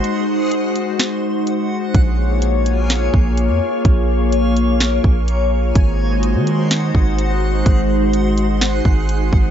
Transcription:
<<
  \new Staff \with { instrumentName = "Synth texture" } { \time 4/4 \key aes \mixolydian \tempo 4 = 126 <aes' ges'' c'''>1 | <bes' aes'' des'''>1~ | <bes' aes'' des'''>1 | <aes' ges'' c'''>1~ |
<aes' ges'' c'''>1 | }
  \new Staff \with { instrumentName = "Ambient pad" } { \time 4/4 \key aes \mixolydian <aes ees' ges' c''>1 | <bes f' aes' des''>1~ | <bes f' aes' des''>1 | <aes ees' ges' c''>1~ |
<aes ees' ges' c''>1 | }
  \new Staff \with { instrumentName = "808-style bass" } { \clef bass \time 4/4 \key aes \mixolydian r1 | bes,,2~ bes,,8 bes,,8. f,16 r8 | bes,,2~ bes,,8 bes,,4. | aes,,4~ aes,,16 ees4~ ees16 aes,,4. |
aes,,2~ aes,,8 aes,,4 aes,,8 | }
  \new DrumStaff \with { instrumentName = "Drums" } \drummode { \time 4/4 hh4 hh8 hh8 <hh sn>4 hh4 | <hh bd>4 hh8 hh8 <hh sn>8 bd8 hh4 | <hh bd>4 hh8 hh8 <hh sn>8 bd8 hh4 | <hh bd>4 hh8 hh8 <hh sn>8 bd8 hh4 |
<hh bd>4 hh8 hh8 <hh sn>8 bd8 hh8 bd8 | }
>>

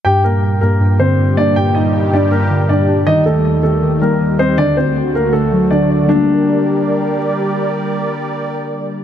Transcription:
<<
  \new Staff \with { instrumentName = "Grand piano" } { \time 4/4 \key g \minor \tempo 4 = 159 <g' g''>8 <bes bes'>4 <bes bes'>4 <c' c''>4 <d' d''>8 | <g' g''>8 <ees' ees''>4 <d' d''>8 <bes bes'>4 <d' d''>4 | <ees' ees''>8 <a a'>4 <a a'>4 <bes bes'>4 <c' c''>8 | <d' d''>8 <c' c''>4 <bes bes'>8 <a a'>4 <d' d''>4 |
d'2. r4 | r1 | }
  \new Staff \with { instrumentName = "Analog synth pad" } { \clef bass \time 4/4 \key g \minor << { <g g'>1~ | <g g'>1~ | <g g'>1 | <a fis'>1 |
<g g' bes' d''>1~ | <g g' bes' d''>1 | } \\ { <g, bes,>1~ | <g, bes,>1 | <ees, ees>1 | <d, d>1 |
r1 | r1 | } >> }
  \new Staff \with { instrumentName = "Synth keys" } { \clef bass \time 4/4 \key g \minor g,4. g,8 g,8 d8 g,8 bes8 | g,4. g,8 g,8 d8 g,8 d'8 | ees4. ees8 ees8 g8 ees8 ees''8 | d4. d8 d8 fis8 d8 d''8 |
<d g bes d'>1~ | <d g bes d'>1 | }
>>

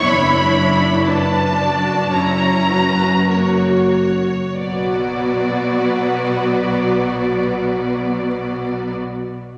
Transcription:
<<
  \new Staff \with { instrumentName = "Violin section" } { \time 4/4 \key b \minor \tempo 4 = 48 b''4 a''4 ais''4 cis''4 | d''1 | }
  \new Staff \with { instrumentName = "Violin section" } { \time 4/4 \key b \minor cis''4 b'8 d''8 cis''8 b'8 ais'8 r8 | <fis' b'>1 | }
  \new Staff \with { instrumentName = "Viola section" } { \time 4/4 \key b \minor << { e'4 d'8 fis'8 e'8 fis'8 fis'8. r16 | b1 | } \\ { d'4 d'4 cis'4 ais8. r16 | fis1 | } >> }
  \new Staff \with { instrumentName = "Cello section" } { \clef bass \time 4/4 \key b \minor fis,2 fis,4.~ fis,16 r16 | b,1 | }
  \new Staff \with { instrumentName = "Double bass section" } { \clef bass \time 4/4 \key b \minor fis,,2 fis,,4.~ fis,,16 r16 | b,,1 | }
>>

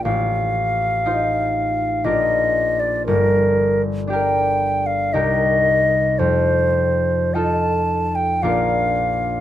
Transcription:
<<
  \new Staff \with { instrumentName = "Flute" } { \time 3/4 \key f \mixolydian \tempo 4 = 58 f''2 ees''8. d''16 | bes'8. r16 g''8. f''16 ees''4 | c''4 a''8. g''16 f''4 | }
  \new Staff \with { instrumentName = "Harp" } { \time 3/4 \key f \mixolydian <a,, f'>4 <ees' f' c''>4 <bes,, d' f' bes'>4 | g,,4 <d' g' bes'>4 <c, ees' g' bes'>4 | f,4 <ees' f' a'>4 <bes,, d' f' bes'>4 | }
>>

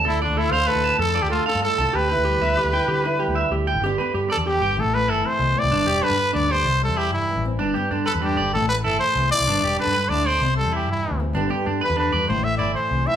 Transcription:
<<
  \new Staff \with { instrumentName = "Trumpet" } { \time 12/8 \key g \mixolydian \tempo 4. = 128 e'8 d'8 e'8 c''8 b'4 a'8. g'16 f'8 a'8 a'4 | b'1~ b'4 r4 | r4. a'8 g'4 a'8 b'8 a'8 c''4 d''8~ | d''4 b'4 d''8 c''4 a'8 g'8 e'4 r8 |
r4. a'8 g'4 a'8 b'8 a'8 c''4 d''8~ | d''4 b'4 d''8 c''4 a'8 g'8 e'4 r8 | r4. b'8 b'4 c''8 e''8 d''8 c''4 e''8 | }
  \new Staff \with { instrumentName = "Clean electric guitar" } { \time 12/8 \key g \mixolydian a'8 d''8 a'8 f''8 a'8 a''8 a'8 d''8 a'8 f''8 a'8 a''8 | g'8 b'8 g'8 e''8 g'8 g''8 g'8 b'8 g'8 e''8 g'8 g''8 | g'8 b'8 g'8 d''8 g'8 g''8 r4 e'8 r4. | d'8 g'8 d'8 b'8 d'8 d''8 r4 e'8 r4. |
d'8 g'8 d'8 b'8 d'8 d''8 r4 e'8 r4. | d'8 g'8 d'8 b'8 d'8 d''8 r4 e'8 r4. | d'8 g'8 d'8 b'8 d'8 d''8 r4 e'8 r4. | }
  \new Staff \with { instrumentName = "Nylon-string guitar" } { \clef bass \time 12/8 \key g \mixolydian << { r8 f'4 d'2 f'4 d'4 f'8 | r8 e'4 b4 e'4 e'2 e'8 | <d b d' g'>8 b2~ b8 r8 a2~ a8 | r8 g2 g'8 r8 g2 c'8 |
r8 b2 d'8 r8 a2 e'8 | r2. r8 g2 c'8 | <d b d' g'>8 b2~ b8 r8 a2 e'8 | } \\ { d4 a4 a,4 d4 a4 a,4 | d4 g4 d4 d4 g4 d4~ | d4 d8 e,8 f,8 g,8 a,4 e8 c8 b,8 a,8 | g,4 d4 g,4 c4 e4 g,4 |
g,4 d4 g,4 a,4 e4 e,4 | g,4 d8 g,8 a,8 b,8 c4 e4 g,4 | g,4 d8 e,8 f,8 g,8 a,4 e4 e,4 | } >> }
  \new Staff \with { instrumentName = "Fingered electric bass" } { \clef bass \time 12/8 \key g \mixolydian d,8. d,8. d,8 r16 d,8 r16 f,8. d,8 r8 g,8 r16 c,16 r16 | d,8. d,8. d,8 r16 d,8 r16 d4~ d16 d,8 r16 d,8. aes,,16 | g,,8 r8 g,8 r16 e,8. g,,8 a,,16 a,,8. g,,8 r8 c,8 r16 c,16 | g,,8 e,,8 r16 g,8. d,4 c,8. e,8. g,8. a,,8. |
g,,8 r8 g,8 r16 e,8. g,,8 a,,16 a,,8. g,,8 r8 c,8 r16 c,16 | g,,8 e,,8 r16 g,8. d,4 c,8. e,8. g,8. d,8. | g,,8 r8 g,8 r16 e,8. e,8 a,,16 a,,8. g,,8 r8 c,8 r8 | }
>>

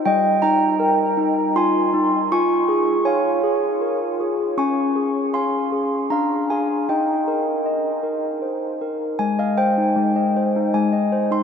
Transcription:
\new Staff \with { instrumentName = "Handbells" } { \time 3/4 \key aes \major \tempo 4 = 79 << { <ees'' g''>8 <g'' bes''>4. <aes'' c'''>4 | <aes'' des'''>4 <f'' aes''>4. r8 | <aes'' des'''>4 <aes'' c'''>4 <f'' bes''>8 <f'' aes''>8 | <ees'' g''>2 r4 |
aes''16 f''16 g''4. aes''8. c'''16 | } \\ { g8 ees'8 bes'8 ees'8 f'8 ees'8 | f'8 aes'8 des''8 aes'8 bes'8 aes'8 | des'8 aes'8 f''8 aes'8 d'8 aes'8 | ees'8 bes'8 ees''8 bes'8 c''8 bes'8 |
aes16 ees''16 c''16 ees'16 aes16 ees''16 c''16 ees'16 aes16 ees''16 c''16 ees'16 | } >> }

